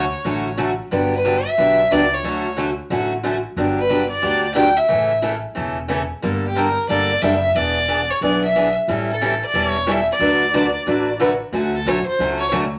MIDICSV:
0, 0, Header, 1, 5, 480
1, 0, Start_track
1, 0, Key_signature, 2, "major"
1, 0, Tempo, 331492
1, 1329, Time_signature, 4, 2, 24, 8
1, 18518, End_track
2, 0, Start_track
2, 0, Title_t, "Fiddle"
2, 0, Program_c, 0, 110
2, 0, Note_on_c, 0, 73, 90
2, 804, Note_off_c, 0, 73, 0
2, 1653, Note_on_c, 0, 71, 90
2, 2137, Note_on_c, 0, 76, 102
2, 2159, Note_off_c, 0, 71, 0
2, 2777, Note_on_c, 0, 74, 94
2, 2799, Note_off_c, 0, 76, 0
2, 3092, Note_on_c, 0, 73, 79
2, 3114, Note_off_c, 0, 74, 0
2, 3740, Note_off_c, 0, 73, 0
2, 5479, Note_on_c, 0, 71, 84
2, 5923, Note_off_c, 0, 71, 0
2, 5929, Note_on_c, 0, 74, 91
2, 6553, Note_off_c, 0, 74, 0
2, 6583, Note_on_c, 0, 79, 101
2, 6903, Note_on_c, 0, 76, 84
2, 6925, Note_off_c, 0, 79, 0
2, 7567, Note_off_c, 0, 76, 0
2, 9355, Note_on_c, 0, 67, 81
2, 9520, Note_on_c, 0, 70, 97
2, 9541, Note_off_c, 0, 67, 0
2, 9972, Note_off_c, 0, 70, 0
2, 9980, Note_on_c, 0, 74, 95
2, 10452, Note_on_c, 0, 76, 95
2, 10474, Note_off_c, 0, 74, 0
2, 10944, Note_on_c, 0, 74, 104
2, 10966, Note_off_c, 0, 76, 0
2, 11732, Note_on_c, 0, 73, 92
2, 11754, Note_off_c, 0, 74, 0
2, 11903, Note_off_c, 0, 73, 0
2, 11924, Note_on_c, 0, 74, 80
2, 12192, Note_off_c, 0, 74, 0
2, 12225, Note_on_c, 0, 76, 89
2, 12659, Note_off_c, 0, 76, 0
2, 13191, Note_on_c, 0, 69, 88
2, 13622, Note_off_c, 0, 69, 0
2, 13692, Note_on_c, 0, 74, 94
2, 13872, Note_on_c, 0, 73, 91
2, 13893, Note_off_c, 0, 74, 0
2, 14356, Note_on_c, 0, 76, 95
2, 14377, Note_off_c, 0, 73, 0
2, 14628, Note_off_c, 0, 76, 0
2, 14647, Note_on_c, 0, 74, 90
2, 16181, Note_off_c, 0, 74, 0
2, 17004, Note_on_c, 0, 69, 81
2, 17204, Note_on_c, 0, 73, 95
2, 17226, Note_off_c, 0, 69, 0
2, 17457, Note_off_c, 0, 73, 0
2, 17466, Note_on_c, 0, 72, 95
2, 17916, Note_off_c, 0, 72, 0
2, 17952, Note_on_c, 0, 73, 96
2, 18118, Note_off_c, 0, 73, 0
2, 18518, End_track
3, 0, Start_track
3, 0, Title_t, "Steel-string acoustic guitar"
3, 0, Program_c, 1, 25
3, 354, Note_on_c, 1, 50, 51
3, 362, Note_on_c, 1, 54, 57
3, 368, Note_on_c, 1, 57, 56
3, 368, Note_on_c, 1, 61, 67
3, 375, Note_on_c, 1, 66, 67
3, 669, Note_off_c, 1, 50, 0
3, 673, Note_off_c, 1, 54, 0
3, 676, Note_off_c, 1, 57, 0
3, 676, Note_off_c, 1, 61, 0
3, 679, Note_off_c, 1, 66, 0
3, 831, Note_on_c, 1, 50, 76
3, 831, Note_on_c, 1, 54, 82
3, 841, Note_on_c, 1, 61, 85
3, 842, Note_on_c, 1, 57, 79
3, 843, Note_on_c, 1, 66, 78
3, 1005, Note_off_c, 1, 50, 0
3, 1005, Note_off_c, 1, 54, 0
3, 1010, Note_off_c, 1, 57, 0
3, 1010, Note_off_c, 1, 61, 0
3, 1011, Note_off_c, 1, 66, 0
3, 1321, Note_on_c, 1, 50, 55
3, 1329, Note_on_c, 1, 54, 62
3, 1329, Note_on_c, 1, 59, 63
3, 1341, Note_on_c, 1, 62, 65
3, 1344, Note_on_c, 1, 67, 66
3, 1632, Note_off_c, 1, 50, 0
3, 1637, Note_off_c, 1, 54, 0
3, 1637, Note_off_c, 1, 59, 0
3, 1642, Note_off_c, 1, 62, 0
3, 1644, Note_off_c, 1, 67, 0
3, 1802, Note_on_c, 1, 54, 71
3, 1804, Note_on_c, 1, 50, 65
3, 1810, Note_on_c, 1, 59, 67
3, 1816, Note_on_c, 1, 62, 73
3, 1816, Note_on_c, 1, 67, 65
3, 1970, Note_off_c, 1, 54, 0
3, 1971, Note_off_c, 1, 50, 0
3, 1974, Note_off_c, 1, 59, 0
3, 1978, Note_off_c, 1, 62, 0
3, 1978, Note_off_c, 1, 67, 0
3, 2282, Note_on_c, 1, 54, 51
3, 2284, Note_on_c, 1, 50, 54
3, 2289, Note_on_c, 1, 59, 54
3, 2296, Note_on_c, 1, 67, 58
3, 2297, Note_on_c, 1, 62, 55
3, 2593, Note_off_c, 1, 54, 0
3, 2594, Note_off_c, 1, 50, 0
3, 2597, Note_off_c, 1, 59, 0
3, 2600, Note_off_c, 1, 67, 0
3, 2601, Note_off_c, 1, 62, 0
3, 2760, Note_on_c, 1, 50, 71
3, 2766, Note_on_c, 1, 54, 75
3, 2772, Note_on_c, 1, 59, 71
3, 2774, Note_on_c, 1, 62, 77
3, 2777, Note_on_c, 1, 67, 70
3, 2930, Note_off_c, 1, 50, 0
3, 2933, Note_off_c, 1, 54, 0
3, 2936, Note_off_c, 1, 59, 0
3, 2937, Note_off_c, 1, 62, 0
3, 2938, Note_off_c, 1, 67, 0
3, 3244, Note_on_c, 1, 50, 56
3, 3244, Note_on_c, 1, 54, 62
3, 3251, Note_on_c, 1, 57, 62
3, 3253, Note_on_c, 1, 61, 64
3, 3261, Note_on_c, 1, 66, 67
3, 3555, Note_off_c, 1, 50, 0
3, 3555, Note_off_c, 1, 54, 0
3, 3558, Note_off_c, 1, 57, 0
3, 3559, Note_off_c, 1, 61, 0
3, 3563, Note_off_c, 1, 66, 0
3, 3716, Note_on_c, 1, 50, 69
3, 3730, Note_on_c, 1, 54, 65
3, 3731, Note_on_c, 1, 61, 73
3, 3733, Note_on_c, 1, 57, 75
3, 3741, Note_on_c, 1, 66, 77
3, 3888, Note_off_c, 1, 50, 0
3, 3895, Note_off_c, 1, 54, 0
3, 3895, Note_off_c, 1, 61, 0
3, 3897, Note_off_c, 1, 57, 0
3, 3901, Note_off_c, 1, 66, 0
3, 4204, Note_on_c, 1, 50, 55
3, 4204, Note_on_c, 1, 54, 58
3, 4214, Note_on_c, 1, 57, 57
3, 4221, Note_on_c, 1, 61, 56
3, 4226, Note_on_c, 1, 66, 60
3, 4515, Note_off_c, 1, 50, 0
3, 4515, Note_off_c, 1, 54, 0
3, 4520, Note_off_c, 1, 57, 0
3, 4523, Note_off_c, 1, 61, 0
3, 4526, Note_off_c, 1, 66, 0
3, 4682, Note_on_c, 1, 50, 66
3, 4686, Note_on_c, 1, 54, 73
3, 4691, Note_on_c, 1, 57, 82
3, 4698, Note_on_c, 1, 61, 84
3, 4702, Note_on_c, 1, 66, 78
3, 4851, Note_off_c, 1, 50, 0
3, 4854, Note_off_c, 1, 54, 0
3, 4856, Note_off_c, 1, 57, 0
3, 4859, Note_off_c, 1, 61, 0
3, 4861, Note_off_c, 1, 66, 0
3, 5170, Note_on_c, 1, 50, 60
3, 5176, Note_on_c, 1, 59, 56
3, 5179, Note_on_c, 1, 54, 62
3, 5184, Note_on_c, 1, 62, 67
3, 5185, Note_on_c, 1, 67, 63
3, 5478, Note_off_c, 1, 50, 0
3, 5482, Note_off_c, 1, 59, 0
3, 5483, Note_off_c, 1, 54, 0
3, 5485, Note_off_c, 1, 62, 0
3, 5486, Note_off_c, 1, 67, 0
3, 5636, Note_on_c, 1, 50, 58
3, 5638, Note_on_c, 1, 54, 62
3, 5646, Note_on_c, 1, 62, 76
3, 5648, Note_on_c, 1, 59, 64
3, 5655, Note_on_c, 1, 67, 73
3, 5809, Note_off_c, 1, 50, 0
3, 5810, Note_off_c, 1, 54, 0
3, 5814, Note_off_c, 1, 62, 0
3, 5815, Note_off_c, 1, 59, 0
3, 5819, Note_off_c, 1, 67, 0
3, 6107, Note_on_c, 1, 50, 54
3, 6114, Note_on_c, 1, 54, 53
3, 6116, Note_on_c, 1, 59, 66
3, 6119, Note_on_c, 1, 62, 57
3, 6123, Note_on_c, 1, 67, 62
3, 6427, Note_off_c, 1, 50, 0
3, 6431, Note_off_c, 1, 54, 0
3, 6432, Note_off_c, 1, 59, 0
3, 6433, Note_off_c, 1, 62, 0
3, 6435, Note_off_c, 1, 67, 0
3, 6586, Note_on_c, 1, 50, 85
3, 6594, Note_on_c, 1, 54, 83
3, 6595, Note_on_c, 1, 62, 86
3, 6597, Note_on_c, 1, 59, 81
3, 6607, Note_on_c, 1, 67, 84
3, 6764, Note_off_c, 1, 50, 0
3, 6768, Note_off_c, 1, 54, 0
3, 6769, Note_off_c, 1, 62, 0
3, 6770, Note_off_c, 1, 59, 0
3, 6775, Note_off_c, 1, 67, 0
3, 7068, Note_on_c, 1, 49, 52
3, 7070, Note_on_c, 1, 52, 62
3, 7072, Note_on_c, 1, 57, 64
3, 7075, Note_on_c, 1, 61, 57
3, 7083, Note_on_c, 1, 69, 67
3, 7388, Note_off_c, 1, 49, 0
3, 7389, Note_off_c, 1, 52, 0
3, 7390, Note_off_c, 1, 57, 0
3, 7392, Note_off_c, 1, 61, 0
3, 7396, Note_off_c, 1, 69, 0
3, 7561, Note_on_c, 1, 49, 66
3, 7561, Note_on_c, 1, 52, 77
3, 7562, Note_on_c, 1, 57, 73
3, 7570, Note_on_c, 1, 61, 69
3, 7581, Note_on_c, 1, 69, 78
3, 7732, Note_off_c, 1, 49, 0
3, 7732, Note_off_c, 1, 52, 0
3, 7732, Note_off_c, 1, 57, 0
3, 7737, Note_off_c, 1, 61, 0
3, 7742, Note_off_c, 1, 69, 0
3, 8034, Note_on_c, 1, 49, 60
3, 8040, Note_on_c, 1, 52, 59
3, 8046, Note_on_c, 1, 57, 55
3, 8053, Note_on_c, 1, 61, 64
3, 8055, Note_on_c, 1, 69, 57
3, 8352, Note_off_c, 1, 49, 0
3, 8355, Note_off_c, 1, 52, 0
3, 8358, Note_off_c, 1, 57, 0
3, 8361, Note_off_c, 1, 61, 0
3, 8362, Note_off_c, 1, 69, 0
3, 8518, Note_on_c, 1, 49, 70
3, 8528, Note_on_c, 1, 52, 79
3, 8533, Note_on_c, 1, 57, 80
3, 8534, Note_on_c, 1, 61, 78
3, 8538, Note_on_c, 1, 69, 78
3, 8691, Note_off_c, 1, 49, 0
3, 8696, Note_off_c, 1, 52, 0
3, 8699, Note_off_c, 1, 57, 0
3, 8699, Note_off_c, 1, 61, 0
3, 8701, Note_off_c, 1, 69, 0
3, 9013, Note_on_c, 1, 50, 64
3, 9016, Note_on_c, 1, 55, 57
3, 9019, Note_on_c, 1, 62, 58
3, 9020, Note_on_c, 1, 58, 61
3, 9030, Note_on_c, 1, 69, 59
3, 9321, Note_off_c, 1, 50, 0
3, 9323, Note_off_c, 1, 55, 0
3, 9325, Note_off_c, 1, 58, 0
3, 9325, Note_off_c, 1, 62, 0
3, 9330, Note_off_c, 1, 69, 0
3, 9491, Note_on_c, 1, 50, 62
3, 9497, Note_on_c, 1, 55, 73
3, 9500, Note_on_c, 1, 58, 70
3, 9501, Note_on_c, 1, 62, 64
3, 9509, Note_on_c, 1, 69, 67
3, 9658, Note_off_c, 1, 50, 0
3, 9661, Note_off_c, 1, 55, 0
3, 9662, Note_off_c, 1, 58, 0
3, 9663, Note_off_c, 1, 62, 0
3, 9667, Note_off_c, 1, 69, 0
3, 9981, Note_on_c, 1, 50, 57
3, 9984, Note_on_c, 1, 55, 54
3, 9988, Note_on_c, 1, 58, 63
3, 9994, Note_on_c, 1, 62, 59
3, 9996, Note_on_c, 1, 69, 62
3, 10286, Note_off_c, 1, 50, 0
3, 10287, Note_off_c, 1, 55, 0
3, 10289, Note_off_c, 1, 58, 0
3, 10292, Note_off_c, 1, 62, 0
3, 10293, Note_off_c, 1, 69, 0
3, 10463, Note_on_c, 1, 50, 72
3, 10465, Note_on_c, 1, 55, 74
3, 10468, Note_on_c, 1, 58, 85
3, 10472, Note_on_c, 1, 62, 76
3, 10479, Note_on_c, 1, 69, 82
3, 10624, Note_off_c, 1, 50, 0
3, 10625, Note_off_c, 1, 55, 0
3, 10626, Note_off_c, 1, 58, 0
3, 10628, Note_off_c, 1, 62, 0
3, 10632, Note_off_c, 1, 69, 0
3, 10943, Note_on_c, 1, 52, 54
3, 10949, Note_on_c, 1, 59, 60
3, 10953, Note_on_c, 1, 62, 64
3, 10959, Note_on_c, 1, 68, 62
3, 11247, Note_off_c, 1, 52, 0
3, 11250, Note_off_c, 1, 59, 0
3, 11252, Note_off_c, 1, 62, 0
3, 11255, Note_off_c, 1, 68, 0
3, 11412, Note_on_c, 1, 52, 68
3, 11419, Note_on_c, 1, 59, 70
3, 11421, Note_on_c, 1, 62, 72
3, 11430, Note_on_c, 1, 68, 74
3, 11578, Note_off_c, 1, 52, 0
3, 11582, Note_off_c, 1, 59, 0
3, 11583, Note_off_c, 1, 62, 0
3, 11588, Note_off_c, 1, 68, 0
3, 11905, Note_on_c, 1, 52, 59
3, 11906, Note_on_c, 1, 59, 67
3, 11913, Note_on_c, 1, 62, 64
3, 11921, Note_on_c, 1, 68, 58
3, 12208, Note_off_c, 1, 52, 0
3, 12208, Note_off_c, 1, 59, 0
3, 12212, Note_off_c, 1, 62, 0
3, 12216, Note_off_c, 1, 68, 0
3, 12387, Note_on_c, 1, 52, 79
3, 12392, Note_on_c, 1, 59, 82
3, 12400, Note_on_c, 1, 68, 84
3, 12401, Note_on_c, 1, 62, 78
3, 12546, Note_off_c, 1, 52, 0
3, 12549, Note_off_c, 1, 59, 0
3, 12553, Note_off_c, 1, 62, 0
3, 12553, Note_off_c, 1, 68, 0
3, 12862, Note_on_c, 1, 52, 61
3, 12867, Note_on_c, 1, 61, 67
3, 12869, Note_on_c, 1, 55, 62
3, 12874, Note_on_c, 1, 64, 64
3, 12880, Note_on_c, 1, 69, 65
3, 13167, Note_off_c, 1, 52, 0
3, 13169, Note_off_c, 1, 61, 0
3, 13170, Note_off_c, 1, 55, 0
3, 13173, Note_off_c, 1, 64, 0
3, 13176, Note_off_c, 1, 69, 0
3, 13338, Note_on_c, 1, 52, 73
3, 13344, Note_on_c, 1, 55, 77
3, 13349, Note_on_c, 1, 61, 75
3, 13352, Note_on_c, 1, 64, 75
3, 13360, Note_on_c, 1, 69, 73
3, 13502, Note_off_c, 1, 52, 0
3, 13505, Note_off_c, 1, 55, 0
3, 13507, Note_off_c, 1, 61, 0
3, 13509, Note_off_c, 1, 64, 0
3, 13513, Note_off_c, 1, 69, 0
3, 13812, Note_on_c, 1, 52, 57
3, 13815, Note_on_c, 1, 55, 58
3, 13822, Note_on_c, 1, 64, 66
3, 13823, Note_on_c, 1, 61, 60
3, 13827, Note_on_c, 1, 69, 65
3, 14122, Note_off_c, 1, 52, 0
3, 14123, Note_off_c, 1, 55, 0
3, 14127, Note_off_c, 1, 61, 0
3, 14127, Note_off_c, 1, 64, 0
3, 14129, Note_off_c, 1, 69, 0
3, 14285, Note_on_c, 1, 52, 73
3, 14290, Note_on_c, 1, 55, 76
3, 14293, Note_on_c, 1, 61, 73
3, 14293, Note_on_c, 1, 64, 87
3, 14299, Note_on_c, 1, 69, 92
3, 14455, Note_off_c, 1, 52, 0
3, 14458, Note_off_c, 1, 55, 0
3, 14459, Note_off_c, 1, 61, 0
3, 14459, Note_off_c, 1, 64, 0
3, 14462, Note_off_c, 1, 69, 0
3, 14768, Note_on_c, 1, 50, 58
3, 14769, Note_on_c, 1, 54, 56
3, 14781, Note_on_c, 1, 62, 56
3, 14782, Note_on_c, 1, 57, 55
3, 14784, Note_on_c, 1, 66, 62
3, 14791, Note_on_c, 1, 71, 66
3, 15079, Note_off_c, 1, 50, 0
3, 15080, Note_off_c, 1, 54, 0
3, 15086, Note_off_c, 1, 57, 0
3, 15086, Note_off_c, 1, 62, 0
3, 15087, Note_off_c, 1, 66, 0
3, 15091, Note_off_c, 1, 71, 0
3, 15256, Note_on_c, 1, 50, 74
3, 15256, Note_on_c, 1, 54, 72
3, 15261, Note_on_c, 1, 57, 70
3, 15265, Note_on_c, 1, 62, 73
3, 15266, Note_on_c, 1, 66, 69
3, 15267, Note_on_c, 1, 71, 70
3, 15421, Note_off_c, 1, 50, 0
3, 15421, Note_off_c, 1, 54, 0
3, 15423, Note_off_c, 1, 57, 0
3, 15425, Note_off_c, 1, 62, 0
3, 15425, Note_off_c, 1, 66, 0
3, 15426, Note_off_c, 1, 71, 0
3, 15727, Note_on_c, 1, 50, 59
3, 15735, Note_on_c, 1, 54, 55
3, 15742, Note_on_c, 1, 57, 61
3, 15744, Note_on_c, 1, 62, 59
3, 15749, Note_on_c, 1, 71, 63
3, 15750, Note_on_c, 1, 66, 60
3, 16038, Note_off_c, 1, 50, 0
3, 16042, Note_off_c, 1, 54, 0
3, 16046, Note_off_c, 1, 57, 0
3, 16047, Note_off_c, 1, 62, 0
3, 16049, Note_off_c, 1, 71, 0
3, 16050, Note_off_c, 1, 66, 0
3, 16210, Note_on_c, 1, 50, 74
3, 16214, Note_on_c, 1, 57, 70
3, 16219, Note_on_c, 1, 54, 74
3, 16223, Note_on_c, 1, 66, 82
3, 16226, Note_on_c, 1, 62, 77
3, 16232, Note_on_c, 1, 71, 79
3, 16377, Note_off_c, 1, 50, 0
3, 16379, Note_off_c, 1, 57, 0
3, 16381, Note_off_c, 1, 54, 0
3, 16384, Note_off_c, 1, 66, 0
3, 16385, Note_off_c, 1, 62, 0
3, 16388, Note_off_c, 1, 71, 0
3, 16689, Note_on_c, 1, 50, 58
3, 16696, Note_on_c, 1, 54, 59
3, 16699, Note_on_c, 1, 57, 61
3, 16705, Note_on_c, 1, 61, 71
3, 16707, Note_on_c, 1, 66, 72
3, 16999, Note_off_c, 1, 50, 0
3, 17002, Note_off_c, 1, 54, 0
3, 17004, Note_off_c, 1, 57, 0
3, 17007, Note_off_c, 1, 61, 0
3, 17008, Note_off_c, 1, 66, 0
3, 17179, Note_on_c, 1, 50, 71
3, 17183, Note_on_c, 1, 54, 75
3, 17186, Note_on_c, 1, 57, 75
3, 17186, Note_on_c, 1, 61, 73
3, 17192, Note_on_c, 1, 66, 79
3, 17341, Note_off_c, 1, 50, 0
3, 17343, Note_off_c, 1, 54, 0
3, 17344, Note_off_c, 1, 57, 0
3, 17344, Note_off_c, 1, 61, 0
3, 17347, Note_off_c, 1, 66, 0
3, 17662, Note_on_c, 1, 50, 55
3, 17667, Note_on_c, 1, 54, 58
3, 17667, Note_on_c, 1, 57, 65
3, 17676, Note_on_c, 1, 61, 59
3, 17681, Note_on_c, 1, 66, 61
3, 17964, Note_off_c, 1, 50, 0
3, 17967, Note_off_c, 1, 54, 0
3, 17967, Note_off_c, 1, 57, 0
3, 17971, Note_off_c, 1, 61, 0
3, 17974, Note_off_c, 1, 66, 0
3, 18121, Note_on_c, 1, 54, 82
3, 18122, Note_on_c, 1, 50, 83
3, 18131, Note_on_c, 1, 57, 84
3, 18135, Note_on_c, 1, 61, 90
3, 18135, Note_on_c, 1, 66, 83
3, 18291, Note_off_c, 1, 54, 0
3, 18292, Note_off_c, 1, 50, 0
3, 18296, Note_off_c, 1, 57, 0
3, 18298, Note_off_c, 1, 61, 0
3, 18298, Note_off_c, 1, 66, 0
3, 18518, End_track
4, 0, Start_track
4, 0, Title_t, "Upright bass"
4, 0, Program_c, 2, 32
4, 0, Note_on_c, 2, 38, 83
4, 169, Note_off_c, 2, 38, 0
4, 361, Note_on_c, 2, 33, 79
4, 1132, Note_off_c, 2, 33, 0
4, 1325, Note_on_c, 2, 31, 83
4, 2095, Note_off_c, 2, 31, 0
4, 2289, Note_on_c, 2, 35, 79
4, 2697, Note_off_c, 2, 35, 0
4, 2769, Note_on_c, 2, 37, 78
4, 3178, Note_off_c, 2, 37, 0
4, 3232, Note_on_c, 2, 38, 80
4, 4008, Note_off_c, 2, 38, 0
4, 4201, Note_on_c, 2, 33, 80
4, 4973, Note_off_c, 2, 33, 0
4, 5161, Note_on_c, 2, 31, 83
4, 5933, Note_off_c, 2, 31, 0
4, 6121, Note_on_c, 2, 38, 77
4, 6894, Note_off_c, 2, 38, 0
4, 7102, Note_on_c, 2, 33, 86
4, 7867, Note_off_c, 2, 33, 0
4, 8060, Note_on_c, 2, 28, 81
4, 8826, Note_off_c, 2, 28, 0
4, 9027, Note_on_c, 2, 31, 89
4, 9790, Note_off_c, 2, 31, 0
4, 9975, Note_on_c, 2, 31, 81
4, 10383, Note_off_c, 2, 31, 0
4, 10455, Note_on_c, 2, 30, 79
4, 10863, Note_off_c, 2, 30, 0
4, 10927, Note_on_c, 2, 28, 83
4, 11699, Note_off_c, 2, 28, 0
4, 11893, Note_on_c, 2, 35, 75
4, 12662, Note_off_c, 2, 35, 0
4, 12855, Note_on_c, 2, 33, 84
4, 13623, Note_off_c, 2, 33, 0
4, 13810, Note_on_c, 2, 28, 73
4, 14580, Note_off_c, 2, 28, 0
4, 14760, Note_on_c, 2, 38, 83
4, 15534, Note_off_c, 2, 38, 0
4, 15737, Note_on_c, 2, 33, 79
4, 16503, Note_off_c, 2, 33, 0
4, 16686, Note_on_c, 2, 38, 80
4, 17155, Note_off_c, 2, 38, 0
4, 17164, Note_on_c, 2, 35, 89
4, 17449, Note_off_c, 2, 35, 0
4, 17652, Note_on_c, 2, 37, 80
4, 18117, Note_off_c, 2, 37, 0
4, 18135, Note_on_c, 2, 38, 97
4, 18518, Note_off_c, 2, 38, 0
4, 18518, End_track
5, 0, Start_track
5, 0, Title_t, "Muted upright bass strokes"
5, 17486, Note_on_c, 9, 29, 40
5, 17631, Note_off_c, 9, 29, 0
5, 18518, End_track
0, 0, End_of_file